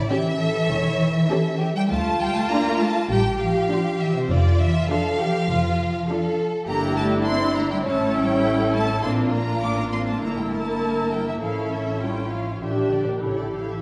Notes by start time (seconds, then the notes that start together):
0.09 E3 C#4 G4 E5
0.40 A4
0.69 E1 C#5
1.00 C#5
1.30 C#4 G4 A4
1.60 G4
1.75 G3 G5
1.89 D2 A3 F4 A5
2.20 G3 G5
2.35 A3 A5
2.49 A#3 D4 F4 A#5
2.81 A3 A5
3.11 A1 G3 G4 G5
3.41 F3 F5
3.70 D4 F4
4.00 E3 E5
4.15 C3 C5
4.30 F1 D3 F4 D5
4.60 E3 E5
4.90 F3 D4 F4 A4 F5
5.19 G4
5.48 F1 F4
6.08 D4 F4 A4
6.67 G1 A#3 D4 E4 G4 A#5
6.97 A3 A5
7.26 C4 E4 C6
7.56 A#3 A#5
7.71 G3 G5
7.85 A1 A3 C#4 E4 C#5 A5
8.16 G3 G5
8.45 A4
8.73 A3 A5
9.03 A#1 A#3 C4 D4 F4 C6
9.32 A#3 A#5
9.61 A1 A#3 D4 D6
9.78 A#3 A#5
9.92 C4 C6
10.08 A3 A5
10.21 G1 A#3 E4 A#4 A#5
10.37 G3 G5
10.51 A3 A5
11.11 G3 G5
11.27 E3 E5
11.41 A1 F3 C#4 E4 A4 F5
11.71 E3 E5
12.01 G3 E4 F4 G5
12.30 F3 F5
12.61 A#1 E3 D4 G4 E5
12.91 D3 D5
13.07 A#2 A#4
13.21 A1 C#3 E4 G4 A4 C#5
13.38 D3 D5
13.53 F3 F5
13.69 E3 E5